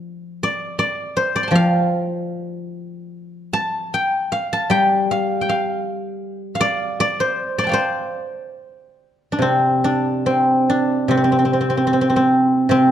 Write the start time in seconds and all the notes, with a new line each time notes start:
Already playing: F3 C4 D4 F4 D5 F5
0.43 D5
0.79 D5
1.17 C5
1.36 D5
1.43 C6
1.48 F3 G5 A5
1.55 F5
3.53 A5
3.94 G5
4.32 F5
4.53 A5
4.70 G3 G5
5.11 F5
5.41 G5
5.49 F5
6.55 F5
6.61 D5
7.00 D5
7.20 C5
7.58 D5 C6
7.64 G5 A5
7.69 D5 F5
7.73 C5
9.32 D4
9.39 C3 C4
9.84 D4
10.26 C4
10.70 D4
11.08 C3 C4
11.17 C4
11.24 C4
11.32 C4
11.39 C4
11.45 C4
11.53 C4
11.61 C4
11.70 C4
11.77 C4
11.87 C4
11.93 C4
12.01 C4
12.10 C4
12.16 C4
12.69 C3 C4